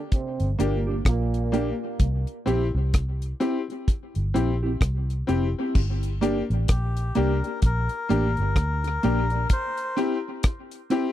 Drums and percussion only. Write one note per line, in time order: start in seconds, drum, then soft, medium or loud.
0.12 kick loud
0.12 closed hi-hat medium
0.40 closed hi-hat soft
0.60 closed hi-hat medium
1.05 kick loud
1.05 cross-stick loud
1.05 closed hi-hat medium
1.34 closed hi-hat soft
1.54 closed hi-hat medium
2.00 kick loud
2.00 closed hi-hat medium
2.27 closed hi-hat soft
2.48 closed hi-hat medium
2.94 kick loud
2.94 cross-stick medium
2.94 closed hi-hat medium
3.22 closed hi-hat medium
3.41 closed hi-hat medium
3.70 closed hi-hat soft
3.88 kick loud
3.88 closed hi-hat medium
4.15 closed hi-hat soft
4.36 closed hi-hat medium
4.81 kick loud
4.81 cross-stick loud
4.81 closed hi-hat medium
5.10 closed hi-hat soft
5.29 closed hi-hat medium
5.75 kick loud
5.75 crash loud
6.03 closed hi-hat medium
6.23 closed hi-hat medium
6.51 closed hi-hat soft
6.68 kick loud
6.68 cross-stick loud
6.68 closed hi-hat loud
6.97 closed hi-hat medium
7.15 closed hi-hat medium
7.44 closed hi-hat soft
7.62 kick loud
7.62 closed hi-hat medium
7.89 closed hi-hat soft
8.10 closed hi-hat medium
8.37 closed hi-hat soft
8.56 kick loud
8.56 cross-stick loud
8.56 closed hi-hat medium
8.84 closed hi-hat medium
9.03 closed hi-hat medium
9.30 closed hi-hat soft
9.50 kick loud
9.50 closed hi-hat loud
9.77 closed hi-hat medium
9.98 closed hi-hat medium
10.43 kick loud
10.43 cross-stick loud
10.43 closed hi-hat loud
10.71 closed hi-hat medium
10.90 closed hi-hat medium